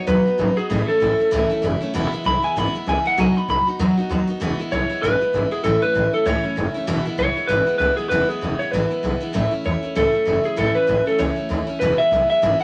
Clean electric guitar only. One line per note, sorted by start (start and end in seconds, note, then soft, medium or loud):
0.07 0.56 B4 loud
0.57 0.87 G#4 loud
0.88 1.79 A4 loud
2.26 2.43 B5 loud
2.44 2.58 G#5 loud
2.58 2.75 B5 loud
2.89 3.06 G#5 medium
3.07 3.20 F#5 loud
3.20 3.36 G#5 medium
3.37 3.49 B5 loud
3.50 3.67 B5 loud
4.72 5.04 C#5 loud
5.02 5.48 B4 loud
5.52 5.63 G#4 medium
5.64 5.81 A4 medium
5.82 6.11 B4 loud
6.14 6.27 A4 medium
6.26 6.72 C#5 medium
7.19 7.50 C#5 loud
7.47 7.77 B4 loud
7.78 7.96 B4 loud
7.97 8.09 G#4 medium
8.09 8.29 B4 loud
8.29 8.61 G#4 medium
8.59 8.71 C#5 medium
8.71 9.21 B4 medium
9.66 9.94 C#5 medium
9.96 10.45 A4 medium
10.45 10.58 G#4 medium
10.58 10.75 A4 medium
10.75 11.07 B4 medium
11.07 11.19 A4 medium
11.19 11.65 C#5 loud
11.80 11.99 B4 medium
11.98 12.29 E5 loud
12.30 12.60 E5 loud
12.61 12.64 F#5 medium